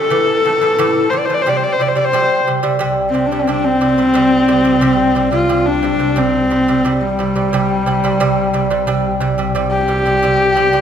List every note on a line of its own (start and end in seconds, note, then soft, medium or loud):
0.00 1.11 A4 loud
0.10 0.37 A2 medium
0.10 0.38 E3 medium
0.45 0.58 A2 medium
0.45 0.58 E3 medium
0.61 0.75 A2 medium
0.61 0.75 E3 medium
0.79 1.05 A2 loud
0.79 1.06 E3 loud
1.10 1.25 A2 medium
1.10 1.26 E3 medium
1.10 1.20 C5 medium
1.19 1.27 D5 medium
1.25 1.36 C5 medium
1.29 1.42 A2 medium
1.29 1.43 E3 medium
1.34 1.43 D5 medium
1.42 1.50 C5 medium
1.46 1.73 C3 medium
1.46 1.73 G3 medium
1.46 1.58 D5 medium
1.56 1.65 C5 medium
1.63 1.74 D5 medium
1.72 1.83 C5 medium
1.80 1.93 C3 medium
1.80 1.93 G3 medium
1.80 1.89 D5 medium
1.88 1.98 C5 medium
1.96 2.09 C3 medium
1.96 2.10 G3 medium
1.96 2.06 D5 medium
2.04 2.45 C5 medium
2.13 2.40 C3 medium
2.13 2.40 G3 loud
2.47 2.60 C3 medium
2.47 2.61 G3 medium
2.63 2.77 C3 medium
2.63 2.77 G3 loud
2.79 8.20 C2 medium
2.79 3.07 C3 loud
2.79 3.07 G3 loud
3.10 3.28 C4 medium
3.14 3.27 C3 medium
3.14 3.28 G3 medium
3.26 3.41 D4 medium
3.32 3.45 C3 medium
3.32 3.45 G3 medium
3.39 3.49 C4 medium
3.48 3.75 C3 medium
3.48 3.75 G3 medium
3.48 3.66 D4 medium
3.64 5.32 C4 loud
3.81 3.95 C3 medium
3.81 3.95 G3 medium
3.98 4.12 C3 medium
3.98 4.12 G3 medium
4.14 4.41 C3 medium
4.14 4.42 G3 loud
4.48 4.62 C3 medium
4.48 4.62 G3 loud
4.65 4.79 C3 medium
4.65 4.79 G3 medium
4.81 5.09 C3 loud
4.81 5.09 G3 loud
5.15 5.29 C3 medium
5.15 5.30 G3 medium
5.32 5.46 C3 medium
5.32 5.46 G3 medium
5.32 5.67 F4 medium
5.49 5.77 C3 medium
5.49 5.77 G3 medium
5.66 6.19 D4 medium
5.83 5.97 C3 medium
5.83 5.97 G3 medium
5.99 6.13 C3 medium
5.99 6.14 G3 medium
6.16 6.44 C3 medium
6.16 6.44 G3 medium
6.16 7.02 C4 medium
6.50 6.64 C3 medium
6.50 6.65 G3 medium
6.68 6.82 C3 medium
6.68 6.82 G3 medium
6.85 7.12 C3 medium
6.85 7.12 G3 medium
7.01 9.23 G3 medium
7.19 7.32 C3 medium
7.19 7.33 G3 medium
7.36 7.49 C3 medium
7.36 7.49 G3 medium
7.53 7.80 C3 loud
7.53 7.80 G3 loud
7.86 8.00 C3 medium
7.86 8.00 G3 medium
8.04 8.17 C3 medium
8.04 8.17 G3 loud
8.20 10.81 C2 medium
8.20 8.47 C3 loud
8.20 8.47 G3 loud
8.54 8.67 C3 medium
8.54 8.67 G3 medium
8.70 8.84 C3 medium
8.70 8.84 G3 medium
8.87 9.14 C3 loud
8.87 9.14 G3 loud
9.20 9.34 C3 medium
9.20 9.35 G3 medium
9.38 9.51 C3 medium
9.38 9.52 G3 medium
9.55 9.82 C3 medium
9.55 9.82 G3 loud
9.71 10.81 G4 loud
9.88 10.02 C3 medium
9.88 10.02 G3 medium
10.06 10.19 C3 medium
10.06 10.19 G3 medium
10.23 10.49 C3 medium
10.23 10.50 G3 medium
10.56 10.69 C3 medium
10.56 10.70 G3 loud
10.73 10.81 C3 medium
10.73 10.81 G3 medium